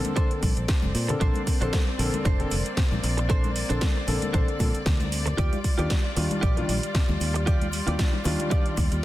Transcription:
Already playing: D3 A#3 C4 A4 D5
0.05 closed hi-hat, high conga, cabasa
0.16 D3 A#3 C4 D4 A4 C5, kick, closed hi-hat, cabasa
0.31 closed hi-hat
0.42 A#1, muted clean electric guitar stroke, kick, open hi-hat, high conga, cabasa
0.57 A#1, closed hi-hat, cabasa
0.68 kick, snare, closed hi-hat, cabasa
0.82 F1, high conga, cabasa
0.95 A#2, open hi-hat, cabasa
1.08 D3 A#3 C4 A4, muted clean electric guitar stroke, closed hi-hat, low conga, cabasa
1.20 A#1 A#3 D4 A4 C5, kick, closed hi-hat, cabasa
1.34 closed hi-hat, high conga, cabasa
1.47 kick, open hi-hat, cabasa
1.61 A#1 D3 A#3 C4 D4 A4 C5, closed hi-hat, cabasa
1.73 kick, snare, closed hi-hat, high conga, cabasa
1.87 muted clean electric guitar stroke
1.99 A#1 D3 A#3 C4 A4, muted clean electric guitar stroke, open hi-hat, cabasa
2.13 closed hi-hat, high conga, cabasa
2.25 F1 D4 A4 C5, kick, closed hi-hat, cabasa
2.39 D3 A#3 C4 A4, closed hi-hat, low conga
2.51 F1, muted clean electric guitar stroke, open hi-hat, high conga, cabasa
2.66 closed hi-hat, cabasa
2.77 kick, snare, closed hi-hat, low conga, cabasa
2.92 A#1, high conga, cabasa
3.03 A#1, open hi-hat, high bongo, cabasa
3.17 muted clean electric guitar stroke, closed hi-hat, high bongo, cabasa
3.29 D4 A4 C5, kick, closed hi-hat, cabasa
3.44 closed hi-hat, high conga, cabasa
3.56 open hi-hat, cabasa
3.69 A#1 D3 A#3 C4 D4 A4 C5, closed hi-hat, cabasa
3.81 kick, snare, closed hi-hat, high conga, cabasa
3.95 muted clean electric guitar stroke, high bongo
4.07 A#1 D3 A#3 C4 A4, muted clean electric guitar stroke, open hi-hat, high bongo, cabasa
4.22 closed hi-hat, high conga, cabasa
4.33 A#1 D3 A#3 C4 D4 A4 C5, kick, closed hi-hat, cabasa
4.48 closed hi-hat
4.59 A#2 D3 A#3 C4 A4, muted clean electric guitar stroke, kick, open hi-hat, high conga, cabasa
4.74 muted fingered electric bass stroke, closed hi-hat, cabasa
4.86 D2, kick, snare, closed hi-hat, cabasa
5.00 closed hi-hat, high conga, cabasa
5.12 open hi-hat, cabasa
5.26 muted clean electric guitar stroke, closed hi-hat, low conga, cabasa
5.37 D#2 G3 F4 G4 D5, kick, closed hi-hat, cabasa
5.53 closed hi-hat, high conga, cabasa
5.64 kick, open hi-hat, cabasa
5.78 D#2 D#3 G3 D4 F4 G4 D5, closed hi-hat, cabasa
5.90 kick, snare, closed hi-hat, high conga, cabasa
6.04 muted clean electric guitar stroke
6.15 D#2 D#3 G3 D4 F4, muted clean electric guitar stroke, open hi-hat, cabasa
6.31 closed hi-hat, high conga, cabasa
6.41 A#1 F4 G4 D5, kick, closed hi-hat, cabasa
6.57 D#3 G3 D4 F4, closed hi-hat, low conga
6.67 A#1, muted clean electric guitar stroke, open hi-hat, high conga, cabasa
6.83 closed hi-hat, cabasa
6.94 kick, snare, closed hi-hat, low conga, cabasa
7.08 D#2, high conga, cabasa
7.20 D#2, open hi-hat, high bongo, cabasa
7.34 muted clean electric guitar stroke, closed hi-hat, high bongo, cabasa
7.46 F4 G4 D5, kick, closed hi-hat, cabasa
7.61 closed hi-hat, high conga, cabasa
7.72 open hi-hat, cabasa
7.87 D#2 D#3 G3 D4 F4 G4 D5, closed hi-hat, cabasa
7.99 kick, snare, closed hi-hat, high conga, cabasa
8.13 muted clean electric guitar stroke, high bongo
8.24 D#2 D#3 G3 D4 F4, muted clean electric guitar stroke, open hi-hat, high bongo, cabasa
8.39 closed hi-hat, high conga, cabasa
8.50 D#3 G3 F4 G4 D5, kick, closed hi-hat, cabasa
8.66 closed hi-hat
8.76 D#2, muted clean electric guitar stroke, kick, open hi-hat, high conga, cabasa
8.92 D#2, closed hi-hat, cabasa

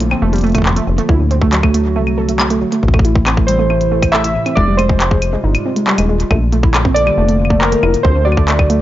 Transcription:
Already playing: A#1 D3 F3 A#3 F4
0.00 A2, closed hi-hat
0.11 C4, claves
0.22 F1 A3
0.33 G3, closed hi-hat
0.36 closed hi-hat
0.38 closed hi-hat
0.41 A3, closed hi-hat
0.44 closed hi-hat
0.47 closed hi-hat
0.49 closed hi-hat
0.52 A3, kick, closed hi-hat
0.55 kick, closed hi-hat, claves
0.62 kick
0.65 kick, clap
0.69 kick
0.73 A3, kick, closed hi-hat
0.87 F1
0.98 A3, closed hi-hat
1.09 D2 F#3 A3 E4 F#4, kick
1.20 A2
1.31 C4, closed hi-hat
1.42 A3, kick
1.53 F#3, clap, closed hi-hat
1.63 A3, kick, claves
1.74 A3, closed hi-hat
1.96 C2 A3
2.07 claves
2.18 A4
2.29 A3, closed hi-hat
2.39 A3, clap, claves
2.50 A3, closed hi-hat
2.61 F#3
2.72 A3, closed hi-hat
2.83 A1 C3 E3 E4, kick
2.88 kick
2.94 A3, kick, claves
2.99 kick
3.05 E4, closed hi-hat
3.15 A2, kick
3.26 C4, clap, closed hi-hat, claves
3.37 A3, kick
3.47 G3 C5, closed hi-hat
3.59 A3
3.70 A3, claves
3.81 closed hi-hat
3.92 A3
4.02 kick, closed hi-hat, claves
4.12 A3 E5, clap
4.24 E4, closed hi-hat
4.35 A2
4.46 C4, closed hi-hat, claves
4.55 F1 G3 G#3 F4 D5, kick
4.68 G3
4.77 G#3 C5, closed hi-hat, claves
4.89 G#3, kick
5.00 clap, closed hi-hat
5.11 G#3, kick
5.22 closed hi-hat, claves
5.33 G#3
5.44 G1 D#4
5.55 G#2, closed hi-hat, claves
5.66 C4
5.76 G#3, closed hi-hat
5.87 G3, clap
5.98 D#1 G#3, closed hi-hat, claves
6.09 G#3
6.20 closed hi-hat
6.31 A#1 D3 F3 A3 A#3, kick, claves
6.53 A3, closed hi-hat
6.63 E4, kick
6.74 A2, clap, closed hi-hat, claves
6.85 C4, kick
6.94 A3 D5, closed hi-hat
7.07 G3, claves
7.18 F1 A3
7.29 A3, closed hi-hat
7.45 claves
7.50 A3, kick
7.60 A#4, clap
7.72 A3, closed hi-hat
7.83 F1 E4, claves
7.94 A2, closed hi-hat
8.03 D2 D3 F#3 A3 C4 F#4 C5, kick
8.16 A3
8.25 F#3 D5
8.32 claves
8.37 A3, kick
8.48 A3, clap, closed hi-hat
8.59 kick, claves
8.70 A3, closed hi-hat

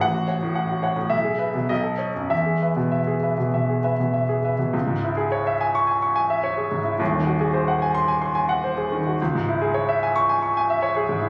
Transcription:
0.01 A1 F#5
0.14 F#4
0.28 C#5 F#5
0.43 A2
0.55 F#5
0.69 F#4
0.83 C#5 F#5
0.96 A2
1.10 B1 E5
1.24 G#4
1.39 B4 E5
1.54 B2
1.69 B1 D#5
1.83 A4
1.98 C#5 D#5
2.15 F#2
2.29 E2 E5
2.46 G#4
2.62 B4 E5
2.76 B2
2.91 E5
3.07 G#4
3.23 B4 E5
3.38 B2
3.54 B2 E5
3.69 G#4
3.83 B4 E5
4.00 B2
4.13 E5
4.29 G#4
4.44 B4 E5
4.59 B2
4.73 C#2
4.87 G#2
5.04 E4
5.17 G#4
5.32 C#5
5.47 E5
5.61 G#5
5.75 C#6
5.87 G#5
6.02 C#6
6.16 G#5
6.30 E5
6.44 C#5
6.57 G#4
6.71 G#2
6.84 E4
6.99 D#1 D#2
7.13 D#3
7.27 F#4
7.41 G#4
7.54 C5
7.68 F#5
7.82 G#5
7.95 C6
8.08 G#5
8.22 C6
8.35 G#5
8.49 F#5
8.64 C5
8.78 G#4
8.92 D#3
9.07 F#4
9.22 C#2
9.35 G#2
9.49 E4
9.62 G#4
9.74 C#5
9.89 E5
10.03 G#5
10.16 C#6
10.29 G#5
10.43 C#6
10.57 G#5
10.70 E5
10.82 C#5
10.96 G#4
11.09 G#2
11.21 E4

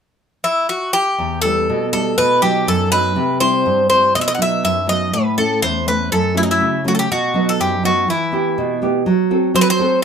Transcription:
0.44 E4
0.69 F#4
0.93 G4
1.18 E2
1.42 G3 B3 E4 A4
1.70 B2
1.93 G3 B3 E4 A4
2.18 B2 B4
2.42 F#3 B3 D#4 G4
2.67 F#2 A4
2.91 F#3 B3 D#4 B4
3.16 C3
3.40 G3 C4 E4 C5
3.66 G2
3.90 G3 C4 E4 C5
4.15 B2 D#5
4.21 E5
4.28 D#5
4.35 F#3 B3 D#4 F#5
4.42 E5
4.64 F#2 E5
4.87 F#3 B3 D#4 D#5
5.13 A2 B4
5.37 A3 C#4 E4 A4
5.62 E2 C5
5.86 A3 C#4 E4 B4
6.12 F#2 A4
6.35 F#3 A3 C#4 E4
6.43 D#4
6.51 E4
6.60 C#3
6.85 F#3 A3 C#4 F#4
6.95 A4
6.99 G4
7.11 B2 F#4
7.34 F#3 B3 D#4
7.49 A4
7.60 F#2 G4
7.84 F#3 B3 D#4 F#4
8.08 E3 E4
8.32 B3 E4 G4
8.58 B2
8.82 B3 E4 G4
9.06 F#3
9.31 C4 F#4 A4
9.54 F#3 C5
9.61 B4
9.70 C5
9.79 C4 F#4 A4

